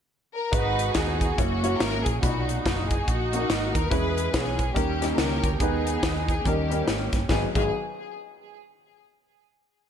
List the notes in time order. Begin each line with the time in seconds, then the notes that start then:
0.35 A#4
0.52 G#1 G#2 G#3 D#4 F#4 B4, kick, closed hi-hat
0.79 closed hi-hat
0.94 D#2 B3 D#4 G#4, kick, snare, closed hi-hat
1.21 kick, closed hi-hat
1.37 F#1 A#3 C#4 E4 F#4 C#5, kick, closed hi-hat
1.63 A#3 E4 F#4 C#5, closed hi-hat
1.79 G#1 A#4, snare, closed hi-hat
2.04 A#1 G#4, kick, closed hi-hat
2.20 B1 A#2 B2 A#3 D4 D#4 F#4 B5, kick, closed hi-hat
2.27 D#4
2.49 closed hi-hat
2.64 F#1 F#4, kick, snare, closed hi-hat
2.89 G#4, kick, closed hi-hat
3.06 A#1 A#3 D#4 F#4, kick, closed hi-hat
3.33 A#3 C#4 F#4 A#4, closed hi-hat
3.38 D#4
3.50 G#1, snare, closed hi-hat
3.74 D#2 A#4, kick, closed hi-hat
3.90 E2 E3 G#3 C#4 E4 G#4 B4, kick, closed hi-hat
4.18 closed hi-hat
4.33 B1 B3 C#4 G#4, kick, snare, closed hi-hat
4.59 kick, closed hi-hat
4.74 D#2 D#3 G3 A#3 C#4 D#4 G4 A#4, kick, closed hi-hat
5.01 G3 C#4 D#4 G4, snare, closed hi-hat
5.17 C#2 C#4 G4 A#4, snare, closed hi-hat
5.44 D2, kick, closed hi-hat
5.59 D#2 D#3 G#3 B3 D#4 G#4 B4, kick, closed hi-hat
5.87 closed hi-hat
6.03 D#2, kick, snare, closed hi-hat
6.28 G#4, kick, closed hi-hat
6.44 D#2 D#3 G3 A#3 C#4 D#4 G4 A#4, kick, closed hi-hat
6.70 G3 C#4 D#4 A#4, closed hi-hat
6.87 G#1, snare, closed hi-hat
7.13 G1, kick, snare, closed hi-hat
7.28 G#1 F#3 B3 D#4 G#4, kick, snare
7.55 G#1 F#3 B3 D#4 G#4, kick, crash